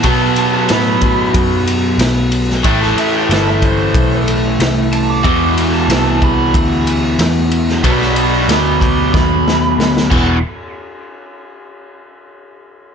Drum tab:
CC |----------------|----------------|----------------|--------------x-|
RD |x-x-x-x-x-x-x-x-|x-x-x-x-x-x-x-x-|x-x-x-x-x-x-x-x-|x-x-x-x---------|
SD |----o-------o--o|-o--o-------o---|----o-------o--o|-o--o---o-o-oo--|
BD |o-----o-o-------|o-----o-o-------|o-----o-o-------|o-----o-o-----o-|

CC |----------------|
RD |----------------|
SD |----------------|
BD |----------------|